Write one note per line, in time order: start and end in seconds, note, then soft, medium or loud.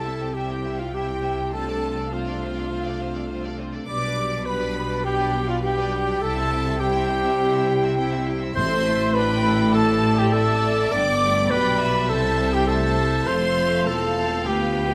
0.00 3.83 C2 soft
0.00 3.84 C3 soft
0.00 0.31 G3 soft
0.00 0.30 E4 soft
0.00 0.35 A4 medium
0.00 0.36 A4 medium
0.00 0.34 A5 soft
0.00 0.38 A5 medium
0.05 0.20 G3 soft
0.05 0.20 E4 soft
0.05 0.20 E5 soft
0.21 0.35 C4 soft
0.21 0.35 G4 soft
0.21 0.35 G5 soft
0.32 0.91 G3 soft
0.32 0.49 G3 soft
0.32 0.91 E4 soft
0.32 0.49 E4 soft
0.32 0.80 G4 soft
0.32 0.81 G4 medium
0.32 0.79 G5 soft
0.36 0.49 E5 soft
0.36 0.77 G5 soft
0.50 0.64 C4 soft
0.50 0.65 G4 soft
0.50 0.65 G5 soft
0.65 0.80 G3 soft
0.65 0.79 E4 soft
0.65 0.80 E5 soft
0.78 0.95 C4 soft
0.78 0.96 F4 soft
0.78 0.96 F4 medium
0.78 0.94 G4 soft
0.78 0.84 F5 soft
0.78 0.94 F5 medium
0.78 0.94 G5 soft
0.92 1.51 G3 soft
0.92 1.51 E4 soft
0.92 1.52 G4 medium
0.92 1.53 G4 medium
0.92 1.08 E5 soft
0.92 1.52 G5 medium
0.92 1.53 G5 medium
0.96 1.09 G3 soft
0.96 1.09 E4 soft
1.09 1.24 C4 soft
1.09 1.24 G4 soft
1.09 1.24 G5 soft
1.23 1.39 G3 soft
1.23 1.39 E4 soft
1.23 1.38 E5 soft
1.38 1.54 C4 soft
1.38 1.54 G4 soft
1.38 1.53 G5 soft
1.52 2.10 A3 soft
1.52 2.09 D4 soft
1.52 2.15 A4 medium
1.52 2.11 A4 medium
1.52 1.66 C5 soft
1.52 2.14 A5 medium
1.52 2.11 A5 medium
1.56 1.68 C4 soft
1.56 1.68 F4 soft
1.67 1.82 D5 soft
1.71 1.84 D4 soft
1.71 1.84 A4 soft
1.82 1.99 C4 soft
1.82 1.99 F4 soft
1.82 1.97 C5 soft
1.97 2.13 D4 soft
1.97 2.13 A4 soft
1.97 2.12 D5 soft
2.11 3.84 A3 medium
2.11 3.84 D4 soft
2.11 3.56 F4 medium
2.11 3.59 F4 medium
2.11 2.27 F4 soft
2.11 2.25 C5 soft
2.11 3.56 F5 medium
2.11 3.59 F5 medium
2.15 2.27 C4 soft
2.25 2.41 D5 soft
2.30 2.43 D4 soft
2.30 2.43 A4 soft
2.40 2.55 C5 soft
2.45 2.58 C4 soft
2.45 2.58 F4 soft
2.54 2.70 D5 soft
2.59 2.72 D4 soft
2.59 2.73 A4 soft
2.70 2.86 C4 soft
2.70 2.86 F4 soft
2.70 2.84 C5 soft
2.85 3.00 D5 soft
2.89 3.02 D4 soft
2.89 3.02 A4 soft
3.00 3.16 C4 soft
3.00 3.16 F4 soft
3.00 3.15 C5 soft
3.14 3.30 D4 soft
3.14 3.31 A4 soft
3.14 3.29 D5 soft
3.29 3.44 C4 soft
3.29 3.44 F4 soft
3.29 3.43 C5 soft
3.44 3.59 D4 soft
3.44 3.59 A4 soft
3.44 3.59 D5 soft
3.58 3.74 C4 soft
3.58 3.74 F4 soft
3.58 3.73 C5 soft
3.73 3.89 D4 soft
3.73 3.88 A4 soft
3.73 3.88 D5 soft
3.87 6.18 B1 medium
3.87 6.19 B2 medium
3.87 4.45 G3 medium
3.87 4.02 B3 soft
3.87 4.45 D4 soft
3.87 4.03 G4 soft
3.87 4.01 B4 medium
3.87 4.47 D5 medium
3.87 4.42 D5 medium
3.87 4.42 D6 medium
3.87 4.43 D6 medium
4.02 4.18 D4 soft
4.02 4.18 B4 soft
4.02 4.17 D5 soft
4.17 4.33 B3 soft
4.17 4.33 G4 soft
4.17 4.31 B4 soft
4.31 4.48 D4 medium
4.31 4.48 B4 soft
4.31 4.46 D5 soft
4.45 5.04 G3 medium
4.45 4.61 B3 soft
4.45 5.04 D4 medium
4.45 4.61 G4 medium
4.45 5.06 B4 medium
4.45 5.05 B4 medium
4.45 4.60 B4 medium
4.45 5.05 B5 medium
4.45 5.04 B5 medium
4.60 4.76 D4 medium
4.60 4.76 B4 medium
4.60 4.75 D5 soft
4.75 4.91 B3 soft
4.75 4.91 G4 soft
4.75 4.90 B4 soft
4.91 5.06 D4 medium
4.91 5.06 B4 soft
4.91 5.05 D5 soft
5.03 5.45 G3 medium
5.03 5.19 B3 soft
5.03 5.46 D4 medium
5.03 5.49 G4 medium
5.03 5.48 G4 medium
5.03 5.19 G4 medium
5.03 5.18 B4 medium
5.03 5.51 G5 medium
5.03 5.48 G5 medium
5.20 5.35 D4 medium
5.20 5.34 B4 soft
5.20 5.34 D5 soft
5.34 5.49 B3 soft
5.34 5.49 G4 soft
5.34 5.49 B4 medium
5.48 5.64 D4 soft
5.48 5.62 F4 medium
5.48 5.56 F4 medium
5.48 5.64 B4 medium
5.48 5.64 D5 soft
5.48 5.66 F5 medium
5.48 5.64 F5 medium
5.62 6.19 G3 medium
5.62 5.78 B3 medium
5.62 6.20 D4 medium
5.62 6.23 G4 medium
5.62 5.77 G4 medium
5.62 6.21 G4 medium
5.62 5.77 B4 medium
5.62 6.21 G5 medium
5.62 6.22 G5 medium
5.78 5.93 D4 medium
5.78 5.93 B4 medium
5.78 5.93 D5 medium
5.93 6.08 B3 medium
5.93 6.08 G4 medium
5.93 6.08 B4 medium
6.07 6.22 D4 medium
6.07 6.22 B4 medium
6.07 6.22 D5 soft
6.20 8.52 C2 medium
6.20 8.52 C3 medium
6.20 6.79 G3 medium
6.20 6.79 E4 medium
6.20 6.36 E4 medium
6.20 6.36 G4 medium
6.20 6.82 A4 medium
6.20 6.79 A4 medium
6.20 6.35 G5 medium
6.20 6.80 A5 medium
6.37 6.52 C4 medium
6.37 6.51 E4 medium
6.37 6.51 E5 medium
6.52 6.65 E4 medium
6.52 6.67 G4 medium
6.52 6.66 G5 medium
6.65 6.81 C4 medium
6.65 6.79 E4 medium
6.65 6.80 E5 medium
6.79 8.53 G3 medium
6.79 8.52 E4 medium
6.79 6.94 E4 medium
6.79 8.24 G4 medium
6.79 8.27 G4 medium
6.79 6.94 G4 medium
6.79 6.93 G5 medium
6.79 8.23 G5 medium
6.79 8.24 G5 medium
6.94 7.10 C4 medium
6.94 7.09 E4 medium
6.94 7.09 E5 medium
7.10 7.24 E4 medium
7.10 7.24 G4 medium
7.10 7.24 G5 medium
7.24 7.39 C4 medium
7.24 7.39 E4 medium
7.24 7.39 E5 medium
7.39 7.53 E4 medium
7.39 7.53 G4 medium
7.39 7.53 G5 medium
7.53 7.69 C4 medium
7.53 7.67 E4 medium
7.53 7.68 E5 medium
7.67 7.82 E4 medium
7.67 7.83 G4 medium
7.67 7.82 G5 medium
7.82 7.98 C4 medium
7.82 7.97 E4 medium
7.82 7.97 E5 medium
7.97 8.12 E4 medium
7.97 8.12 G4 medium
7.97 8.11 G5 medium
8.11 8.27 C4 medium
8.11 8.26 E4 medium
8.11 8.26 E5 medium
8.27 8.41 E4 medium
8.27 8.42 G4 medium
8.27 8.42 G5 medium
8.41 8.56 C4 medium
8.41 8.56 E4 medium
8.41 8.55 E5 medium
8.55 10.88 A1 medium
8.55 10.88 A2 medium
8.55 9.40 A2 medium
8.55 10.87 A3 medium
8.55 8.84 C4 medium
8.55 10.87 E4 medium
8.55 9.11 A4 medium
8.55 9.15 C5 loud
8.55 9.16 C5 medium
8.55 9.11 E5 medium
8.55 9.15 C6 loud
8.55 9.11 C6 medium
8.86 9.15 A3 medium
9.13 9.74 D4 medium
9.13 9.73 B4 loud
9.13 9.45 B4 medium
9.13 9.73 G5 medium
9.13 9.73 B5 loud
9.13 9.73 B5 medium
9.45 9.74 A4 medium
9.74 10.93 C4 medium
9.74 10.20 A4 medium
9.74 10.21 A4 medium
9.74 12.11 D5 medium
9.74 10.18 A5 medium
9.74 10.33 A5 medium
9.74 10.20 A5 medium
10.18 10.35 G4 medium
10.18 10.31 G4 loud
10.18 10.35 G5 medium
10.18 10.34 G5 medium
10.32 10.94 A4 loud
10.32 10.94 A4 medium
10.32 10.91 E5 medium
10.32 10.92 A5 medium
10.32 10.91 A5 medium
10.92 11.50 G1 medium
10.92 11.50 G2 medium
10.92 11.92 B3 medium
10.92 11.00 B3 medium
10.92 11.92 D4 medium
10.92 11.52 D5 loud
10.92 11.53 D5 loud
10.92 11.50 G5 medium
10.92 11.53 D6 loud
10.92 11.52 D6 medium
11.22 11.51 A3 medium
11.50 12.10 B1 medium
11.50 12.10 B2 medium
11.50 12.10 G3 medium
11.50 12.09 B4 loud
11.50 12.11 B4 medium
11.50 11.80 G5 medium
11.50 12.11 B5 medium
11.50 12.10 B5 medium
11.81 12.68 E5 medium
12.09 13.28 C2 medium
12.09 13.28 C3 medium
12.09 13.25 G3 medium
12.09 12.68 G3 medium
12.09 13.25 E4 medium
12.09 12.55 A4 medium
12.09 12.69 C5 medium
12.09 12.55 A5 medium
12.09 12.54 A5 medium
12.53 12.67 G4 medium
12.53 12.71 G4 medium
12.53 12.67 G5 medium
12.53 12.69 G5 medium
12.67 12.99 A3 medium
12.67 13.28 A4 loud
12.67 13.30 A4 medium
12.67 13.27 C5 medium
12.67 13.27 E5 medium
12.67 13.28 A5 medium
12.67 13.29 A5 medium
13.00 13.28 G3 medium
13.26 13.86 F1 medium
13.26 13.86 F2 medium
13.26 14.47 A3 medium
13.26 13.57 A3 medium
13.26 14.94 F4 medium
13.26 13.86 A4 medium
13.26 13.88 C5 medium
13.26 13.87 C5 loud
13.26 14.94 F5 medium
13.26 13.88 C6 medium
13.58 13.87 A3 medium
13.86 14.47 E1 medium
13.86 14.46 E2 medium
13.86 14.16 C4 medium
13.86 14.46 A4 medium
13.86 14.45 A4 medium
13.86 14.48 A4 medium
13.86 14.47 A5 medium
13.86 14.46 A5 medium
14.17 14.46 C4 medium
14.46 14.94 D2 medium
14.46 14.94 B3 medium
14.46 14.77 B3 medium
14.46 14.94 G4 medium
14.46 14.94 B4 medium
14.46 14.94 G5 medium
14.77 14.94 A3 medium